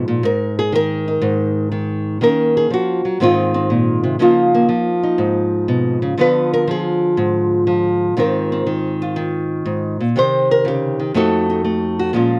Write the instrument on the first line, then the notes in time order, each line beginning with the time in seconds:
nylon-string guitar
Already playing: G#2 F3 A#3 D#4 F4
0.08 A#2
0.23 G#2 A#4
0.59 G#4
0.72 D#3 A#4
1.08 D#4
1.22 G#2
1.72 D#3
2.21 D#3 A#3 C#4 A#4
2.57 G#4
2.70 F3 F#4
3.05 F#3
3.20 G#2 D#3 C4 D#4 F4
3.54 C4
3.70 A#2
4.04 C3
4.19 C#3 F3 A#3 D#4 F4
4.55 A#3
4.69 F3
5.03 D#4
5.18 G#2
5.68 B2
6.02 C#3
6.17 D3 F3 B3 F4 B4
6.54 A#4
6.68 F3 G#4
7.17 G#2
7.67 F3
8.17 G#2 D#3 C4 F4 A#4
8.52 C4
8.66 D#3
9.02 F4
9.16 D#3
9.66 G#2
10.01 A#2
10.16 C3 D#3 D#4 G4 C5
10.51 A#4
10.65 C#3 G4
11.00 D#3
11.14 F2 A3 D#4 F#4 A4
11.50 D#4
11.65 A3
11.99 F#4
12.13 A#2 F3 G#3 C#4 F4